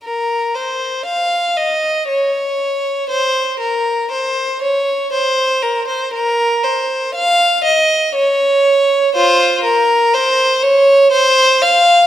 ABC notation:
X:1
M:3/4
L:1/16
Q:1/4=60
K:Cphr
V:1 name="Violin"
B2 c2 f2 e2 d4 | c2 B2 c2 d2 c2 B c | B2 c2 f2 e2 d4 | [Fc]2 B2 c2 d2 c2 f2 |]